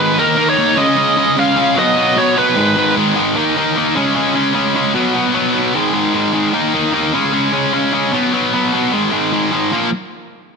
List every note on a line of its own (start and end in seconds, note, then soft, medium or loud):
0.00 0.17 G#2 medium
0.00 0.17 D#3 loud
0.00 0.17 G#3 loud
0.00 0.17 B4 medium
0.18 0.36 D#3 loud
0.18 0.37 A#3 loud
0.18 0.37 D#4 loud
0.18 0.47 A#4 loud
0.37 0.57 D#3 medium
0.37 0.57 A#3 medium
0.37 0.58 D#4 medium
0.50 0.79 C#5 loud
0.58 0.76 D#3 medium
0.58 0.77 A#3 medium
0.58 0.77 D#4 medium
0.76 0.96 C#3 loud
0.76 0.96 G#3 loud
0.76 0.97 C#4 loud
0.76 1.33 D#5 loud
0.97 1.16 C#3 medium
0.97 1.16 G#3 medium
0.97 1.17 C#4 medium
1.17 1.35 C#3 medium
1.17 1.36 G#3 loud
1.17 1.37 C#4 medium
1.37 1.54 C#3 loud
1.37 1.55 G#3 loud
1.37 1.56 C#4 loud
1.37 1.75 F5 loud
1.56 1.75 C#3 medium
1.56 1.76 G#3 loud
1.56 1.76 C#4 loud
1.75 1.95 B2 loud
1.75 1.96 F#3 loud
1.75 1.96 B3 loud
1.75 2.19 D#5 loud
1.96 2.15 B2 medium
1.96 2.16 F#3 medium
1.96 2.17 B3 medium
2.16 2.35 B2 loud
2.16 2.36 F#3 loud
2.16 2.36 B3 loud
2.16 2.38 C#5 medium
2.36 2.55 B2 loud
2.36 2.56 F#3 loud
2.36 2.56 B3 loud
2.36 2.93 B4 loud
2.55 2.75 G#2 loud
2.55 2.75 D#3 loud
2.55 2.76 G#3 loud
2.76 2.95 G#2 medium
2.76 2.95 D#3 medium
2.76 2.96 G#3 medium
2.96 3.14 G#2 loud
2.96 3.15 D#3 loud
2.96 3.15 G#3 loud
3.15 3.34 G#2 medium
3.15 3.35 D#3 medium
3.15 3.35 G#3 medium
3.36 3.55 D#3 loud
3.36 3.56 A#3 loud
3.36 3.57 D#4 loud
3.56 3.75 D#3 medium
3.56 3.76 A#3 medium
3.56 3.76 D#4 medium
3.76 3.95 D#3 medium
3.76 3.95 A#3 medium
3.76 3.95 D#4 medium
3.95 4.14 C#3 medium
3.95 4.15 G#3 loud
3.95 4.15 C#4 loud
4.15 4.33 C#3 medium
4.15 4.34 G#3 medium
4.15 4.34 C#4 medium
4.35 4.52 C#3 medium
4.35 4.53 G#3 medium
4.35 4.54 C#4 medium
4.54 4.73 C#3 medium
4.54 4.74 G#3 loud
4.54 4.75 C#4 loud
4.75 4.94 C#3 medium
4.75 4.94 G#3 medium
4.75 4.94 C#4 medium
4.94 5.13 B2 loud
4.94 5.14 F#3 loud
4.94 5.14 B3 loud
5.14 5.33 B2 medium
5.14 5.33 F#3 medium
5.14 5.34 B3 medium
5.34 5.52 B2 medium
5.34 5.53 F#3 medium
5.34 5.54 B3 medium
5.53 5.73 B2 medium
5.53 5.73 F#3 loud
5.53 5.73 B3 loud
5.74 5.92 G#2 medium
5.74 5.93 D#3 loud
5.74 5.93 G#3 loud
5.93 6.12 G#2 medium
5.93 6.13 D#3 medium
5.93 6.14 G#3 medium
6.14 6.32 G#2 loud
6.14 6.32 D#3 loud
6.14 6.33 G#3 loud
6.33 6.52 G#2 medium
6.33 6.52 D#3 medium
6.33 6.53 G#3 medium
6.53 6.72 D#3 loud
6.53 6.73 A#3 loud
6.53 6.73 D#4 loud
6.73 6.91 D#3 medium
6.73 6.92 A#3 medium
6.73 6.93 D#4 medium
6.92 7.12 D#3 medium
6.92 7.12 A#3 medium
6.92 7.12 D#4 loud
7.13 7.32 C#3 medium
7.13 7.32 G#3 medium
7.13 7.33 C#4 loud
7.33 7.50 C#3 medium
7.33 7.51 G#3 medium
7.33 7.52 C#4 medium
7.52 7.72 C#3 medium
7.52 7.72 G#3 medium
7.52 7.73 C#4 medium
7.73 7.92 C#3 loud
7.73 7.93 G#3 medium
7.73 7.93 C#4 loud
7.93 8.12 C#3 medium
7.93 8.12 G#3 medium
7.93 8.12 C#4 medium
8.12 8.32 B2 medium
8.12 8.32 F#3 medium
8.12 8.32 B3 loud
8.33 8.52 B2 medium
8.33 8.53 F#3 medium
8.33 8.54 B3 medium
8.53 8.72 B2 medium
8.53 8.73 F#3 medium
8.53 8.73 B3 medium
8.73 8.91 B2 medium
8.73 8.92 F#3 medium
8.73 8.92 B3 loud
8.92 9.11 G#2 medium
8.92 9.11 D#3 medium
8.92 9.12 G#3 medium
9.12 9.31 G#2 medium
9.12 9.32 D#3 medium
9.12 9.32 G#3 medium
9.32 9.50 G#2 medium
9.32 9.51 D#3 loud
9.32 9.52 G#3 loud
9.52 9.71 G#2 medium
9.52 9.71 D#3 medium
9.52 9.71 G#3 medium
9.71 9.88 A#2 medium
9.71 9.88 F3 loud
9.71 9.88 A#3 loud